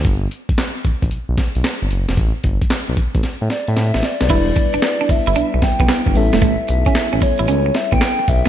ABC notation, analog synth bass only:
X:1
M:4/4
L:1/16
Q:"Swing 16ths" 1/4=113
K:Em
V:1 name="Analog synth bass" clef=bass
G,,,2 z A,,, z2 A,,, A,,, B,,, B,,, z B,,, z G,,, F,,, E,,, | A,,, z G,,, z2 B,,, z A,,, z A,, z A,, A,, A,,, z B,,, | E,,,2 z G,,, z2 G,,, G,,, B,,, B,,, z B,,, z G,,, A,,, E,,, | A,,, z B,,, z2 A,,, z A,,, ^C,,2 z A,,, z2 B,,, z |]